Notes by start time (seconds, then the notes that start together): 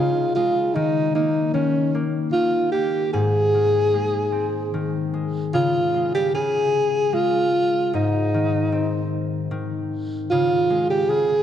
Already playing: C#3 G#3 F4
0.35 G#3 F4
0.74 D#3 D#4
1.15 A#3 D#4
1.54 D#3 C#4
1.95 A#3
2.32 D#3 F4
2.72 A#3 G4
3.13 G#2 G#4
3.54 D#3
3.94 G#3
4.32 C4
4.74 D#3
5.14 G#3
5.54 C#3 F4
5.94 G#3
6.15 G4
6.34 C#3 G#4
7.13 G#3 F4
7.93 G#2 D#4
8.34 D#3
8.72 C4
9.51 D#3
10.31 C#3 F4
10.70 G#3
10.90 G4
11.09 C#3 G#4